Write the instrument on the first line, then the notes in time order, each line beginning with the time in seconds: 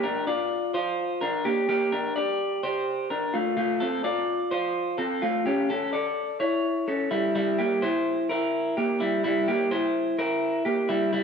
clean electric guitar
0.03 D4 A#4
0.27 F4 D5
0.74 F4 C5
1.21 D4 A#4
1.45 A#3 G4
1.69 A#3 G4
1.92 D4 A#4
2.16 G4 D5
2.63 G4 C5
3.10 D4 A#4
3.34 A3 F4
3.57 A3 F4
3.80 C4 A4
4.04 F4 D5
4.51 F4 C5
4.98 C4 A4
5.22 A3 F4
5.46 C#4 G4
5.70 C#4 A4
5.93 A4 D5
6.40 E4 C#5
6.88 C#4 A4
7.11 G3 E4
7.35 G3 E4
7.58 A#3 G4
7.82 E4 C5
8.29 E4 A#4
8.77 A#3 G4
9.00 G3 E4
9.24 G3 E4
9.48 A#3 G4
9.71 E4 C5
10.19 E4 A#4
10.65 A#3 G4
10.89 G3 E4
11.13 G3 E4